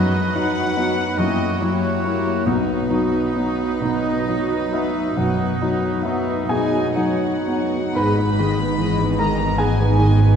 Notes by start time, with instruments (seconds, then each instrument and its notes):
Already playing: cello section F#2, grand piano F#2, viola section F#3 B3, violin section D#4 F#4 D#5, oboe B4
0.33 viola section F#3 B3, grand piano F#3 D#4, violin section D#4 F#4 F#5
0.76 viola section F#3 B3, grand piano B3 D#4, violin section D#4 F#4
1.18 grand piano F#2, cello section F#2, viola section F#3 A#3, violin section E4 G4 D#5, oboe F#4
1.60 viola section F#3 A#3, grand piano F#3 E4, violin section E4 G4 C#5
2.04 viola section F#3 A#3, grand piano A#3 E4, violin section E4 G4
2.46 grand piano B1, cello section B2, viola section F#3 B3, oboe D#4, violin section D#4 F#4 B4
2.90 grand piano F#3 D#4, viola section F#3 B3, violin section D#4 F#4
3.36 viola section F#3 B3, grand piano B3 D#4, violin section D#4 F#4
3.82 cello section B2, viola section F#3 B3, grand piano B3 D#4, violin section D#4 F#4, clarinet D#5
4.28 grand piano F#3 D#4, viola section F#3 B3, violin section D#4 F#4
4.72 viola section F#3 B3, grand piano B3 D#4, violin section D#4 F#4, clarinet E5
5.17 grand piano F#2, cello section B2, viola section F#3 B3, violin section D#4 F#4, clarinet F#5
5.61 viola section F#3 B3, grand piano F#3 D#4, violin section D#4 F#4
6.03 viola section F#3 B3, grand piano B3 D#4, violin section D#4 F#4, clarinet E5
6.49 cello section B2, viola section F#3 B3, grand piano B3 D#4 G#4 G#5, violin section D#4 F#4 G#5, clarinet D#5
6.96 grand piano F#3 D#4 F#4 F#5, viola section F#3 B3, violin section D#4 F#4 F#5, clarinet C#5
7.48 viola section F#3 B3, grand piano B3 D#4, violin section D#4 F#4
7.95 double bass section G#1, cello section G#2, grand piano G#2 B4 B5, viola section G#3 G#4, violin section D#5 B5
8.17 viola section B3 D#4, violin section B4
8.39 grand piano D#3, viola section G#3 G#4, violin section D#5
8.59 viola section B3 D#4, violin section B4
8.78 grand piano E3, viola section G#3 G#4, violin section D#5
8.98 viola section B3 D#4, violin section B4
9.18 grand piano D#3 A#4 A#5, viola section G#3 G#4, violin section D#5 A#5
9.37 viola section B3 D#4, violin section B4
9.58 viola section G#3 G#4, grand piano B3 G#4 G#5, violin section D#5 G#5
9.79 viola section B3 D#4, violin section B4
9.99 grand piano D#3, viola section G#3 G#4, violin section D#5
10.19 viola section B3 D#4, violin section B4